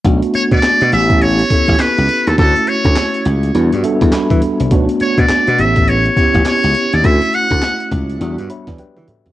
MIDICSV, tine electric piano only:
0, 0, Header, 1, 2, 480
1, 0, Start_track
1, 0, Key_signature, 2, "minor"
1, 0, Tempo, 582524
1, 41, Time_signature, 4, 2, 24, 8
1, 7683, End_track
2, 0, Start_track
2, 0, Title_t, "Tine electric piano"
2, 0, Program_c, 0, 4
2, 40, Note_on_c, 0, 57, 81
2, 43, Note_on_c, 0, 59, 83
2, 47, Note_on_c, 0, 62, 74
2, 50, Note_on_c, 0, 66, 91
2, 184, Control_c, 0, 64, 127
2, 748, Note_off_c, 0, 59, 0
2, 757, Note_on_c, 0, 59, 72
2, 759, Note_off_c, 0, 57, 0
2, 761, Note_on_c, 0, 61, 67
2, 763, Note_off_c, 0, 62, 0
2, 765, Note_off_c, 0, 66, 0
2, 765, Note_on_c, 0, 64, 69
2, 768, Note_on_c, 0, 67, 80
2, 771, Control_c, 0, 64, 0
2, 907, Control_c, 0, 64, 127
2, 1164, Note_off_c, 0, 59, 0
2, 1166, Note_off_c, 0, 61, 0
2, 1168, Note_off_c, 0, 64, 0
2, 1170, Note_off_c, 0, 67, 0
2, 1238, Note_on_c, 0, 59, 63
2, 1241, Note_on_c, 0, 61, 63
2, 1243, Note_on_c, 0, 64, 66
2, 1247, Note_on_c, 0, 69, 69
2, 1791, Note_off_c, 0, 59, 0
2, 1793, Note_off_c, 0, 61, 0
2, 1794, Note_off_c, 0, 64, 0
2, 1796, Note_off_c, 0, 69, 0
2, 1959, Note_on_c, 0, 57, 71
2, 1962, Note_on_c, 0, 61, 69
2, 1965, Note_on_c, 0, 64, 66
2, 1969, Note_on_c, 0, 66, 76
2, 1972, Control_c, 0, 64, 0
2, 2136, Control_c, 0, 64, 127
2, 2679, Note_off_c, 0, 57, 0
2, 2681, Note_off_c, 0, 61, 0
2, 2682, Note_off_c, 0, 64, 0
2, 2684, Note_off_c, 0, 66, 0
2, 2918, Note_on_c, 0, 55, 87
2, 2922, Note_on_c, 0, 59, 89
2, 2926, Note_on_c, 0, 62, 86
2, 2930, Note_on_c, 0, 66, 96
2, 2933, Control_c, 0, 64, 0
2, 3071, Control_c, 0, 64, 127
2, 3122, Note_off_c, 0, 55, 0
2, 3124, Note_off_c, 0, 59, 0
2, 3126, Note_off_c, 0, 62, 0
2, 3128, Note_off_c, 0, 66, 0
2, 3157, Note_on_c, 0, 55, 86
2, 3161, Note_on_c, 0, 59, 76
2, 3163, Note_on_c, 0, 76, 68
2, 3164, Note_on_c, 0, 62, 73
2, 3167, Note_on_c, 0, 69, 93
2, 3385, Note_off_c, 0, 76, 0
2, 3404, Note_on_c, 0, 83, 71
2, 3711, Note_off_c, 0, 55, 0
2, 3713, Note_off_c, 0, 59, 0
2, 3715, Note_off_c, 0, 62, 0
2, 3716, Note_off_c, 0, 69, 0
2, 3849, Note_off_c, 0, 83, 0
2, 3880, Note_on_c, 0, 57, 81
2, 3884, Note_on_c, 0, 59, 80
2, 3887, Note_on_c, 0, 62, 80
2, 3889, Note_on_c, 0, 66, 92
2, 3891, Control_c, 0, 64, 0
2, 4022, Control_c, 0, 64, 127
2, 4590, Note_off_c, 0, 59, 0
2, 4599, Note_off_c, 0, 57, 0
2, 4600, Note_on_c, 0, 59, 81
2, 4603, Note_off_c, 0, 62, 0
2, 4604, Note_off_c, 0, 66, 0
2, 4605, Note_on_c, 0, 61, 67
2, 4607, Note_on_c, 0, 64, 73
2, 4610, Control_c, 0, 64, 0
2, 4610, Note_on_c, 0, 67, 81
2, 4754, Control_c, 0, 64, 127
2, 5006, Note_off_c, 0, 59, 0
2, 5008, Note_off_c, 0, 61, 0
2, 5009, Note_off_c, 0, 64, 0
2, 5011, Note_off_c, 0, 67, 0
2, 5081, Note_on_c, 0, 59, 69
2, 5085, Note_on_c, 0, 61, 61
2, 5087, Note_on_c, 0, 64, 64
2, 5091, Note_on_c, 0, 67, 76
2, 5633, Note_off_c, 0, 59, 0
2, 5635, Note_off_c, 0, 61, 0
2, 5636, Note_off_c, 0, 64, 0
2, 5638, Note_off_c, 0, 67, 0
2, 5800, Note_on_c, 0, 57, 77
2, 5804, Note_on_c, 0, 61, 64
2, 5808, Note_on_c, 0, 64, 65
2, 5810, Control_c, 0, 64, 0
2, 5810, Note_on_c, 0, 66, 79
2, 5975, Control_c, 0, 64, 127
2, 6519, Note_off_c, 0, 57, 0
2, 6521, Note_off_c, 0, 61, 0
2, 6523, Note_off_c, 0, 64, 0
2, 6524, Note_off_c, 0, 66, 0
2, 6761, Note_on_c, 0, 55, 90
2, 6763, Note_on_c, 0, 59, 84
2, 6766, Note_on_c, 0, 62, 80
2, 6771, Note_on_c, 0, 66, 103
2, 6772, Control_c, 0, 64, 0
2, 6920, Control_c, 0, 64, 127
2, 6963, Note_off_c, 0, 55, 0
2, 6965, Note_off_c, 0, 59, 0
2, 6966, Note_off_c, 0, 62, 0
2, 6968, Note_off_c, 0, 66, 0
2, 7004, Note_on_c, 0, 76, 58
2, 7004, Note_on_c, 0, 83, 66
2, 7008, Note_on_c, 0, 73, 54
2, 7142, Note_off_c, 0, 76, 0
2, 7144, Note_off_c, 0, 73, 0
2, 7150, Note_on_c, 0, 74, 72
2, 7155, Note_on_c, 0, 71, 54
2, 7226, Note_off_c, 0, 83, 0
2, 7234, Note_off_c, 0, 71, 0
2, 7238, Note_off_c, 0, 74, 0
2, 7244, Note_on_c, 0, 71, 77
2, 7244, Note_on_c, 0, 79, 79
2, 7250, Note_on_c, 0, 67, 61
2, 7466, Note_off_c, 0, 79, 0
2, 7470, Note_off_c, 0, 71, 0
2, 7474, Note_off_c, 0, 67, 0
2, 7483, Note_on_c, 0, 69, 73
2, 7483, Note_on_c, 0, 76, 72
2, 7487, Note_on_c, 0, 66, 59
2, 7621, Note_off_c, 0, 69, 0
2, 7623, Note_off_c, 0, 66, 0
2, 7630, Note_on_c, 0, 67, 57
2, 7635, Note_on_c, 0, 64, 54
2, 7683, Note_off_c, 0, 64, 0
2, 7683, Note_off_c, 0, 67, 0
2, 7683, Note_off_c, 0, 76, 0
2, 7683, End_track
0, 0, End_of_file